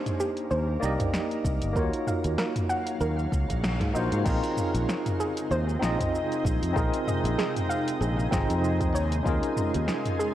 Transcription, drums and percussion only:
0.06 closed hi-hat soft
0.06 mid tom medium
0.06 shaker soft
0.20 shaker medium
0.37 closed hi-hat medium
0.37 shaker soft
0.51 shaker soft
0.83 shaker medium
1.00 kick medium
1.00 closed hi-hat medium
1.00 mid tom medium
1.00 shaker soft
1.14 snare medium
1.14 shaker soft
1.31 closed hi-hat soft
1.45 kick loud
1.45 shaker medium
1.62 closed hi-hat medium
1.62 shaker soft
1.76 kick loud
1.76 shaker soft
1.94 closed hi-hat soft
2.07 mid tom medium
2.07 shaker medium
2.24 closed hi-hat medium
2.24 shaker soft
2.38 snare loud
2.38 shaker soft
2.56 closed hi-hat soft
2.56 mid tom medium
2.56 shaker soft
2.70 shaker medium
2.87 closed hi-hat medium
2.87 shaker soft
3.01 shaker soft
3.19 shaker soft
3.32 kick loud
3.32 shaker medium
3.50 kick medium
3.50 closed hi-hat medium
3.50 shaker soft
3.64 snare medium
3.64 shaker soft
3.81 kick medium
3.81 snare soft
3.81 closed hi-hat soft
3.96 shaker medium
4.12 closed hi-hat medium
4.12 shaker soft
4.26 kick loud
4.26 crash loud
4.26 shaker soft
4.43 closed hi-hat soft
4.43 shaker soft
4.57 mid tom medium
4.57 shaker medium
4.75 closed hi-hat medium
4.75 shaker soft
4.89 snare medium
4.89 shaker soft
5.06 closed hi-hat soft
5.06 mid tom medium
5.06 shaker soft
5.20 shaker medium
5.37 closed hi-hat medium
5.37 shaker soft
5.52 shaker soft
5.69 shaker soft
5.82 snare medium
5.82 shaker medium
6.00 kick medium
6.00 closed hi-hat medium
6.00 mid tom medium
6.00 shaker soft
6.15 shaker soft
6.32 closed hi-hat soft
6.32 shaker soft
6.45 kick loud
6.45 shaker medium
6.63 closed hi-hat medium
6.63 shaker soft
6.76 kick loud
6.76 shaker soft
6.94 closed hi-hat soft
6.94 shaker soft
7.08 mid tom medium
7.08 shaker medium
7.25 closed hi-hat medium
7.25 shaker soft
7.39 snare medium
7.39 shaker soft
7.57 closed hi-hat soft
7.57 mid tom medium
7.57 shaker soft
7.71 shaker medium
7.88 closed hi-hat medium
7.88 shaker soft
8.02 shaker soft
8.19 shaker soft
8.32 kick loud
8.32 snare medium
8.32 shaker medium
8.50 closed hi-hat medium
8.50 shaker soft
8.64 shaker soft
8.81 kick loud
8.81 closed hi-hat soft
8.81 shaker soft
8.95 shaker medium
9.12 closed hi-hat medium
9.12 shaker soft
9.26 kick loud
9.26 shaker soft
9.43 closed hi-hat soft
9.43 shaker soft
9.56 mid tom medium
9.56 shaker medium
9.74 closed hi-hat medium
9.74 shaker soft
9.88 snare medium
9.88 shaker soft
10.05 closed hi-hat soft
10.05 mid tom medium
10.05 shaker soft
10.20 shaker medium

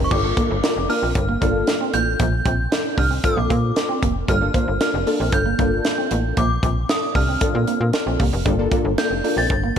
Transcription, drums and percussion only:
0.11 kick loud
0.11 crash medium
0.37 kick loud
0.37 closed hi-hat medium
0.64 snare loud
0.64 closed hi-hat loud
0.90 open hi-hat medium
1.15 kick loud
1.15 closed hi-hat loud
1.42 kick medium
1.42 closed hi-hat medium
1.67 snare medium
1.67 closed hi-hat medium
1.94 closed hi-hat medium
2.20 kick loud
2.20 closed hi-hat loud
2.46 kick loud
2.46 closed hi-hat medium
2.72 snare loud
2.72 closed hi-hat loud
2.98 kick loud
2.98 open hi-hat medium
3.24 kick loud
3.24 closed hi-hat loud
3.50 kick medium
3.50 closed hi-hat medium
3.76 snare medium
3.76 closed hi-hat medium
4.03 kick loud
4.03 closed hi-hat medium
4.28 kick loud
4.28 closed hi-hat medium
4.54 kick loud
4.54 closed hi-hat medium
4.81 snare loud
4.81 closed hi-hat loud
5.07 open hi-hat medium
5.32 kick loud
5.32 closed hi-hat loud
5.59 kick medium
5.59 closed hi-hat medium
5.85 snare medium
5.85 closed hi-hat medium
6.11 closed hi-hat medium
6.37 kick loud
6.37 closed hi-hat loud
6.63 kick loud
6.63 closed hi-hat medium
6.89 snare loud
6.89 closed hi-hat loud
7.15 kick loud
7.15 open hi-hat medium
7.41 kick loud
7.41 closed hi-hat loud
7.67 closed hi-hat medium
7.93 snare medium
7.93 closed hi-hat medium
8.20 kick loud
8.20 open hi-hat medium
8.46 kick loud
8.46 closed hi-hat medium
8.72 kick loud
8.72 closed hi-hat medium
8.98 snare loud
8.98 closed hi-hat loud
9.24 open hi-hat medium
9.50 kick loud
9.50 closed hi-hat medium

